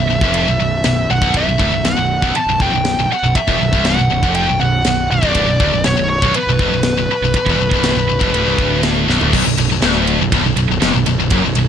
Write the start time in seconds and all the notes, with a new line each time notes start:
Already playing: E5
0.10 B0 B1
0.21 F1 F2, kick
0.34 ride bell
0.48 B0 B1
0.59 B0 B1
0.84 B0 B1, snare, ride bell
1.09 B0 B1 F#5
1.21 B0 B1, kick
1.34 B0 B1 E5, kick, ride bell
1.46 B0 B1
1.59 D1 D2, kick
1.72 B0 B1
1.84 B0 B1 F#5, snare, ride bell
1.96 B0 B1
2.22 B0 B1, kick
2.34 A5, muted picked electric bass stroke, muted distorted electric guitar stroke, ride bell
2.46 B0 B1
2.60 F1 F2 G5, kick
2.72 B0 B1
2.85 snare, ride bell
2.96 B0 B1
3.09 F#5, muted picked electric bass stroke, muted distorted electric guitar stroke
3.23 B0 B1
3.35 E5, muted picked electric bass stroke, muted distorted electric guitar stroke, kick, ride bell
3.48 E1 E2, kick
3.60 B0 B1
3.72 C1 C2, kick
3.85 F#5, snare, ride bell
3.99 B0 B1
4.10 B0 B1
4.22 F1 F2, kick
4.35 G5, ride bell
4.49 B0 B1
4.60 B0 B1 F#5
4.85 B0 B1, snare, ride bell
5.10 B0 B1 D5
5.23 B0 B1, kick
5.35 B0 B1, kick, ride bell
5.47 B0 B1
5.60 D1 D2, kick
5.73 B0 B1
5.84 B0 B1 C#5, snare, ride bell
5.97 B0 B1
6.09 C#5
6.22 B0 B1, kick
6.34 B4, muted picked electric bass stroke, muted distorted electric guitar stroke, ride bell
6.47 B0 B1
6.59 F1 F2, kick
6.72 B0 B1
6.83 snare, ride bell
6.97 B0 B1
7.09 muted picked electric bass stroke, muted distorted electric guitar stroke
7.22 B0 B1
7.34 muted picked electric bass stroke, muted distorted electric guitar stroke, kick, ride bell
7.45 E1 E2, kick
7.50 E2
7.58 B0 B1
7.69 C1 C2, kick
7.73 C2
7.84 snare, ride bell
7.95 B0
7.99 B1
8.09 B0 B1
8.21 F1 F2, kick
8.32 D1 D2, ride bell
8.45 C1 C2
8.58 D1 D2, kick
8.83 snare, ride bell
9.07 B0 B1, snare
9.20 D1 D2, floor tom
9.33 B0 B1, kick, crash
9.45 B0 B1
9.58 B0 B1, ride
9.69 B0 B1
9.82 D1 D2, snare, ride
10.07 ride
10.19 B0 B1
10.32 B0 B1, kick, ride
10.43 B0 B1
10.56 B0 B1, ride
10.69 B0 B1
10.82 F1 F2, snare, ride
10.94 B0 B1
11.06 B0 B1, ride
11.19 B0 B1
11.30 F#1 F#2, kick, ride
11.44 B0 B1
11.55 B0 B1, ride